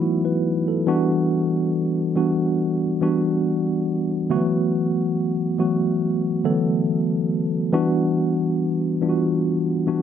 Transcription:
0.00 0.87 E3 medium
0.00 0.88 F#3 medium
0.00 0.88 A3 medium
0.00 0.88 B3 medium
0.00 0.88 D#4 medium
0.00 0.89 E4 loud
0.00 0.23 F#4 medium
0.25 0.65 B4 medium
0.68 1.08 A4 medium
0.87 1.89 E3 loud
0.87 1.89 G3 loud
0.87 1.89 B3 loud
0.87 1.89 D4 loud
0.87 1.90 F#4 loud
2.15 2.84 E3 medium
2.15 2.84 G3 medium
2.15 2.84 B3 medium
2.15 2.85 D4 medium
2.15 2.85 F#4 medium
3.01 4.03 E3 medium
3.01 4.03 G3 medium
3.01 4.03 B3 medium
3.01 4.04 D4 medium
3.01 4.04 F#4 loud
4.30 4.37 D3 medium
4.30 5.32 F#3 loud
4.30 5.32 A3 loud
4.30 5.32 B3 loud
4.30 5.32 F#4 loud
4.36 5.35 E3 loud
5.58 6.27 E3 medium
5.58 6.27 F#3 medium
5.58 6.27 A3 medium
5.58 6.28 B3 medium
5.58 6.28 F#4 medium
6.44 6.51 D3 medium
6.44 7.46 F#3 medium
6.44 7.46 A3 medium
6.44 7.46 B3 medium
6.44 7.47 A4 loud
6.50 7.49 E3 medium
7.72 8.74 E3 loud
7.72 8.75 G3 loud
7.72 8.75 B3 loud
7.72 8.75 D4 loud
7.72 8.75 F#4 loud
9.01 9.70 E3 medium
9.01 9.70 G3 medium
9.01 9.70 B3 medium
9.01 9.70 D4 medium
9.01 9.09 F4 medium
9.09 9.74 F#4 medium
9.87 10.02 E3 medium
9.87 10.02 G3 medium
9.87 10.02 B3 medium
9.87 10.02 D4 medium
9.87 10.02 F#4 medium

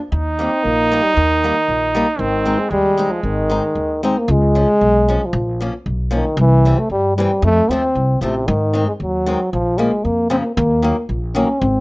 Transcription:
0.12 0.46 D#2 loud
0.12 2.21 D#4 loud
0.39 0.50 G3 medium
0.39 0.50 A#3 soft
0.39 0.65 C4 medium
0.39 0.51 D#4 medium
0.64 0.98 A#1 medium
0.64 1.04 A#3 loud
0.92 1.02 G3 medium
0.92 1.02 A#3 soft
0.92 1.03 D#4 medium
1.03 1.16 G3 medium
1.15 1.50 D#2 loud
1.15 1.93 D#3 medium
1.44 1.55 G3 medium
1.44 1.55 A#3 soft
1.44 1.55 D#4 medium
1.68 2.02 A#1 medium
1.95 2.06 G3 medium
1.95 2.06 A#3 medium
1.95 2.07 D#4 medium
2.18 2.53 G#1 medium
2.18 2.60 D#3 loud
2.18 2.71 C4 medium
2.45 2.57 G#3 medium
2.45 2.58 C4 medium
2.45 2.58 D#4 medium
2.59 2.71 G#3 medium
2.70 3.05 D#2 medium
2.70 3.12 G3 loud
2.70 4.02 G#3 medium
2.98 3.09 G#3 medium
2.98 3.09 C4 soft
2.98 3.10 D#4 medium
3.11 3.23 F3 medium
3.23 3.58 G#1 medium
3.23 3.99 D#3 medium
3.50 3.62 G#3 medium
3.50 3.62 C4 soft
3.50 3.62 D#4 medium
3.75 4.10 D#2 medium
4.03 4.15 G#3 medium
4.03 4.15 C4 medium
4.03 4.20 C4 loud
4.03 4.15 D#4 medium
4.18 4.33 A#3 medium
4.28 4.62 C#2 loud
4.28 5.27 G#3 loud
4.55 4.67 F3 medium
4.55 4.67 G#3 soft
4.55 4.67 C#4 soft
4.81 5.15 B1 medium
5.09 5.20 F3 medium
5.09 5.20 G#3 medium
5.09 5.20 C#4 medium
5.25 5.75 F3 medium
5.33 5.67 A#1 loud
5.61 5.72 F3 medium
5.61 5.73 A#3 medium
5.61 5.73 C#4 medium
5.86 6.20 B1 medium
6.11 6.23 F3 medium
6.11 6.24 A#3 medium
6.11 6.24 C#4 medium
6.15 6.38 D#3 medium
6.37 6.71 C2 loud
6.37 6.80 E3 loud
6.65 6.77 E3 soft
6.65 6.77 G3 medium
6.65 6.78 C4 medium
6.78 6.91 A3 medium
6.90 7.24 G2 medium
6.90 7.15 G3 loud
7.16 7.29 E3 medium
7.16 7.41 G3 medium
7.16 7.29 G3 medium
7.16 7.30 C4 medium
7.42 7.60 F2 loud
7.42 7.72 A3 loud
7.69 7.92 D#2 medium
7.69 7.82 F3 medium
7.69 7.82 A3 medium
7.69 8.22 C4 loud
7.69 7.83 C4 medium
7.95 8.19 C2 medium
8.21 8.45 A1 medium
8.21 8.48 C3 medium
8.21 8.33 F3 medium
8.21 8.34 A3 medium
8.21 8.34 C4 medium
8.47 8.82 G#2 loud
8.47 8.87 D#3 loud
8.74 8.86 D#3 medium
8.74 8.86 G#3 soft
8.74 8.86 C4 medium
8.87 8.93 G#3 medium
9.00 9.34 D#2 medium
9.00 9.50 F#3 medium
9.26 9.38 D#3 medium
9.26 9.39 G#3 medium
9.26 9.39 C4 medium
9.53 9.87 A#1 loud
9.53 9.79 F3 loud
9.78 9.90 C#3 medium
9.78 9.90 F3 soft
9.78 10.05 G#3 medium
9.78 9.91 A#3 medium
10.04 10.39 F2 medium
10.04 10.30 A#3 loud
10.30 10.42 C#3 medium
10.30 10.42 F3 medium
10.30 10.43 A#3 medium
10.30 10.36 C4 loud
10.43 10.55 A#3 medium
10.56 10.91 D#2 loud
10.56 11.05 A#3 loud
10.82 10.94 D#3 medium
10.82 10.95 F#3 medium
10.82 10.95 A#3 medium
11.09 11.43 A#1 medium
11.35 11.47 D#3 medium
11.35 11.47 F#3 medium
11.35 11.47 A#3 medium
11.35 11.61 C#4 medium
11.60 11.80 G#1 loud
11.60 11.80 C4 loud

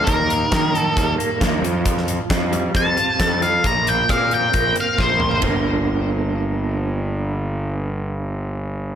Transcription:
0.00 0.97 G3 medium
0.04 0.44 D#2 loud
0.04 0.73 D#3 medium
0.04 0.76 A#4 medium
0.04 kick loud
0.04 closed hi-hat medium
0.30 closed hi-hat medium
0.52 0.89 D#3 medium
0.52 1.17 A#3 medium
0.52 kick loud
0.52 snare medium
0.52 closed hi-hat medium
0.74 1.63 D#3 medium
0.74 1.13 A4 medium
0.74 closed hi-hat medium
0.97 1.15 D#2 medium
0.97 1.63 G3 medium
0.97 kick loud
0.97 closed hi-hat medium
1.18 1.63 A#3 medium
1.18 closed hi-hat medium
1.40 1.59 D#2 medium
1.40 2.29 F4 medium
1.40 kick medium
1.40 snare loud
1.40 closed hi-hat medium
1.62 2.18 F2 medium
1.62 1.85 F3 medium
1.62 closed hi-hat medium
1.85 3.64 F3 medium
1.85 kick loud
1.85 closed hi-hat medium
1.97 snare soft
2.08 closed hi-hat medium
2.30 2.67 F2 medium
2.30 2.96 F4 medium
2.30 kick loud
2.30 snare loud
2.30 closed hi-hat medium
2.52 3.64 G3 medium
2.52 closed hi-hat medium
2.74 2.93 F2 medium
2.74 3.64 C4 medium
2.74 3.42 A5 medium
2.74 kick loud
2.74 closed hi-hat medium
2.96 3.41 F4 medium
2.96 closed hi-hat medium
3.20 3.57 F2 medium
3.20 3.64 A4 medium
3.20 kick medium
3.20 snare medium
3.20 closed hi-hat medium
3.42 4.10 F4 medium
3.42 3.65 F5 medium
3.42 closed hi-hat medium
3.64 4.02 A#1 medium
3.64 4.76 A#2 medium
3.64 3.88 A#5 medium
3.64 kick loud
3.64 closed hi-hat medium
3.87 4.08 G5 medium
3.87 closed hi-hat medium
4.09 4.47 A#2 medium
4.09 4.75 C4 medium
4.09 4.32 F5 medium
4.09 kick medium
4.09 cross-stick medium
4.09 closed hi-hat medium
4.31 5.42 F3 medium
4.31 4.74 G5 medium
4.31 closed hi-hat soft
4.54 4.72 A#1 medium
4.54 5.43 A#3 medium
4.54 kick medium
4.54 closed hi-hat medium
4.76 5.18 C4 medium
4.76 closed hi-hat medium
4.81 5.01 F5 medium
4.98 5.36 A#1 medium
4.98 5.43 F4 medium
4.98 5.41 C5 medium
4.98 kick medium
4.98 snare soft
5.19 5.42 C4 medium
5.19 mid tom medium
5.31 floor tom medium
5.40 8.95 G1 medium
5.40 8.95 G2 medium
5.40 8.95 D3 medium
5.40 8.95 F3 medium
5.40 8.95 A#3 medium
5.40 kick medium
5.40 ride medium
5.45 8.95 D4 medium

